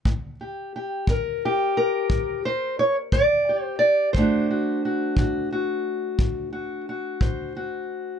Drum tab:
BD |o--o--o--o--|o--o--o--o--|